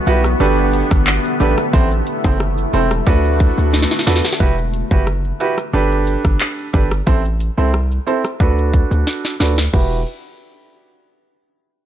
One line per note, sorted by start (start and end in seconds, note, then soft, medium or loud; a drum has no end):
0.00 0.39 E3 medium
0.00 0.39 G3 medium
0.00 1.69 B3 medium
0.00 0.37 F#4 medium
0.06 0.35 B1 loud
0.06 0.21 E4 medium
0.06 0.21 F#4 medium
0.06 0.21 G4 medium
0.06 0.21 B4 medium
0.06 closed hi-hat medium
0.06 shaker medium
0.24 cross-stick medium
0.24 shaker medium
0.40 0.83 G1 loud
0.40 1.72 D3 medium
0.40 3.04 A3 medium
0.40 1.33 D4 medium
0.40 1.33 G4 medium
0.40 1.72 G4 medium
0.40 1.33 A4 medium
0.40 1.33 B4 loud
0.40 shaker medium
0.58 shaker medium
0.73 closed hi-hat medium
0.73 shaker medium
0.91 1.19 G1 medium
0.91 kick loud
0.91 cross-stick loud
0.91 shaker medium
1.07 clap loud
1.07 shaker medium
1.24 shaker medium
1.40 1.55 A1 loud
1.40 1.54 D4 medium
1.40 1.54 G4 medium
1.40 1.54 A4 medium
1.40 1.54 B4 medium
1.40 closed hi-hat medium
1.40 shaker medium
1.40 shaker soft
1.58 cross-stick medium
1.58 shaker medium
1.73 2.02 A1 loud
1.73 3.06 C3 medium
1.73 3.06 E3 medium
1.73 1.87 C4 loud
1.73 1.87 E4 medium
1.73 3.06 E4 medium
1.73 1.88 A4 medium
1.73 1.88 C5 loud
1.73 kick loud
1.73 shaker medium
1.91 shaker soft
1.91 shaker medium
2.07 closed hi-hat medium
2.07 shaker medium
2.24 2.66 F#1 loud
2.24 2.37 C4 medium
2.24 2.37 E4 medium
2.24 2.37 A4 medium
2.24 2.37 C5 medium
2.24 kick loud
2.24 high timbale medium
2.24 shaker medium
2.40 cross-stick loud
2.40 shaker medium
2.58 shaker soft
2.58 shaker medium
2.73 3.02 E1 loud
2.73 2.87 C4 medium
2.73 2.87 E4 medium
2.73 2.88 A4 medium
2.73 2.88 C5 medium
2.73 closed hi-hat medium
2.73 shaker medium
2.91 cross-stick loud
2.91 shaker medium
3.06 3.50 D2 loud
3.06 4.39 D3 medium
3.06 4.39 A3 medium
3.06 4.39 B3 medium
3.06 3.99 D4 medium
3.06 3.99 F#4 medium
3.06 4.39 F#4 medium
3.06 3.99 A4 medium
3.06 3.99 B4 loud
3.06 kick loud
3.06 shaker medium
3.24 shaker medium
3.40 kick medium
3.40 closed hi-hat medium
3.40 shaker medium
3.58 3.86 D2 medium
3.58 shaker medium
3.73 snare medium
3.73 shaker medium
3.82 snare medium
3.91 snare medium
3.91 shaker medium
3.99 snare medium
4.07 4.22 E2 loud
4.07 4.21 D4 medium
4.07 4.21 F#4 medium
4.07 4.21 A4 medium
4.07 4.21 B4 medium
4.07 snare loud
4.07 closed hi-hat medium
4.07 shaker medium
4.16 snare medium
4.24 snare loud
4.24 shaker medium
4.33 snare loud
4.40 4.83 E1 loud
4.40 4.54 E4 medium
4.40 4.54 F#4 medium
4.40 4.54 G4 medium
4.40 4.54 B4 loud
4.40 kick loud
4.40 shaker medium
4.58 shaker medium
4.74 closed hi-hat medium
4.74 shaker medium
4.91 5.33 F#1 loud
4.91 5.03 E4 medium
4.91 5.04 F#4 medium
4.91 5.04 G4 medium
4.91 5.04 B4 medium
4.91 kick loud
4.91 shaker medium
5.07 cross-stick medium
5.07 shaker medium
5.25 shaker soft
5.40 5.54 E4 medium
5.40 5.54 F#4 medium
5.40 5.54 G4 medium
5.40 5.54 B4 medium
5.40 closed hi-hat medium
5.40 shaker medium
5.58 cross-stick medium
5.58 shaker medium
5.73 6.17 G1 loud
5.73 6.66 D4 medium
5.73 6.66 G4 medium
5.73 6.66 A4 medium
5.73 6.66 B4 loud
5.73 shaker medium
5.92 shaker medium
6.07 closed hi-hat medium
6.07 shaker medium
6.25 6.38 G1 medium
6.25 kick medium
6.25 cross-stick medium
6.25 shaker medium
6.40 clap loud
6.40 shaker medium
6.58 shaker medium
6.73 7.02 G1 medium
6.73 6.87 D4 medium
6.73 6.87 G4 medium
6.73 6.88 A4 medium
6.73 6.88 B4 medium
6.73 kick loud
6.73 closed hi-hat medium
6.73 shaker soft
6.91 cross-stick loud
6.91 shaker medium
7.07 7.50 A1 loud
7.07 7.21 C4 medium
7.07 7.21 E4 medium
7.07 7.21 A4 medium
7.07 7.21 C5 loud
7.07 kick loud
7.07 shaker medium
7.25 shaker medium
7.40 closed hi-hat medium
7.40 shaker medium
7.57 7.99 C2 loud
7.57 7.70 C4 medium
7.57 7.70 E4 medium
7.57 7.70 A4 medium
7.57 7.70 C5 medium
7.57 shaker medium
7.74 cross-stick medium
7.74 shaker medium
7.92 shaker soft
8.07 8.21 C4 medium
8.07 8.21 E4 medium
8.07 8.21 A4 medium
8.07 8.21 C5 medium
8.07 closed hi-hat medium
8.07 shaker medium
8.25 cross-stick medium
8.25 shaker medium
8.40 8.83 D2 loud
8.40 9.33 D4 medium
8.40 9.33 F#4 medium
8.40 9.33 A4 medium
8.40 9.33 B4 loud
8.40 kick medium
8.40 shaker medium
8.58 shaker medium
8.74 kick medium
8.74 closed hi-hat medium
8.74 shaker medium
8.91 9.04 D2 medium
8.91 shaker medium
9.07 snare medium
9.07 shaker medium
9.25 snare medium
9.25 shaker medium
9.40 9.68 D2 loud
9.40 9.54 D4 medium
9.40 9.54 F#4 medium
9.40 9.54 A4 medium
9.40 9.54 B4 medium
9.40 snare loud
9.40 closed hi-hat medium
9.40 shaker soft
9.58 snare medium
9.58 shaker medium
9.73 10.05 E1 loud
9.73 9.98 E4 medium
9.73 9.99 F#4 medium
9.73 9.99 G4 medium
9.73 9.99 B4 medium
9.73 kick loud
9.73 crash medium